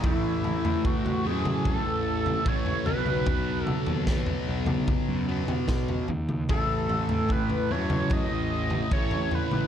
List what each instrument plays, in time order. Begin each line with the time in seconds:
0.04 picked electric bass A1, distorted electric guitar A2 E3 A3, analog synth lead E4 B5, kick, floor tom
0.44 floor tom
0.65 picked electric bass A2, floor tom
0.85 analog synth lead F#4 C#6, kick, floor tom
1.06 floor tom
1.24 picked electric bass F#2, distorted electric guitar A2 E3 A3, analog synth lead G#4 D#6
1.45 floor tom, mid tom
1.65 analog synth lead A4 E6, kick, floor tom
1.86 picked electric bass A1
2.26 floor tom
2.45 picked electric bass A1, distorted electric guitar A2 E3 A3, analog synth lead C#5 G#6, kick
2.66 floor tom
2.86 picked electric bass B1, distorted electric guitar B2 F#3 B3, analog synth lead B4 F#6, floor tom
3.06 mid tom
3.26 kick, floor tom
3.66 analog synth lead A4 E6, floor tom, mid tom
3.86 picked electric bass D#2, floor tom
4.07 distorted electric guitar B2 F#3 B3, kick, snare
4.26 floor tom
4.48 picked electric bass B1
4.66 floor tom, mid tom
4.88 kick, floor tom, mid tom
5.08 picked electric bass F#2
5.28 distorted electric guitar B2 F#3 B3
5.48 picked electric bass B2, floor tom
5.68 kick, snare
5.89 floor tom
6.08 picked electric bass D#2, floor tom
6.29 mid tom
6.49 picked electric bass A1, distorted electric guitar A2 E3 A3, analog synth lead A4 E6, kick, floor tom
6.89 floor tom
7.09 picked electric bass A2, floor tom
7.29 analog synth lead B4 F#6, kick, floor tom
7.50 floor tom
7.71 picked electric bass F#2, distorted electric guitar A2 E3 A3, analog synth lead C#5 G#6
7.90 floor tom, mid tom
8.10 analog synth lead D#5 A#6, kick, floor tom
8.32 picked electric bass A1
8.70 floor tom
8.92 picked electric bass A1, distorted electric guitar A2 E3 A3, analog synth lead C#5 G#6, kick
9.11 floor tom
9.31 analog synth lead B4 F#6, floor tom
9.51 picked electric bass A1, mid tom